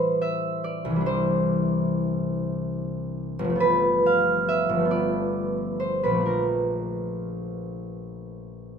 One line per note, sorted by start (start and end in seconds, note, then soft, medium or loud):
0.00 0.98 A2 soft
0.00 0.89 E3 soft
0.00 0.95 G3 soft
0.00 2.22 C4 soft
0.00 1.09 A4 medium
0.00 1.05 C5 medium
0.00 0.20 E5 medium
0.21 3.65 E5 medium
0.64 1.35 D5 medium
0.85 3.54 C2 medium
0.90 3.57 E3 soft
0.96 4.86 G3 soft
1.01 4.91 D4 soft
1.06 3.65 C5 medium
3.39 4.68 G1 medium
3.44 4.73 F3 soft
3.50 4.78 A3 soft
3.55 4.84 B3 medium
3.60 6.02 B4 medium
4.06 7.96 F5 medium
4.49 5.22 E5 medium
4.69 6.19 G1 medium
4.75 6.09 F3 soft
4.79 6.14 A3 soft
4.85 6.27 B3 soft
4.91 8.79 D5 medium
5.80 6.19 C5 medium
6.03 8.79 A#1 soft
6.03 6.43 B4 medium
6.10 8.79 F3 soft
6.15 8.79 A3 soft
6.20 8.79 D4 soft
6.26 8.79 A#4 medium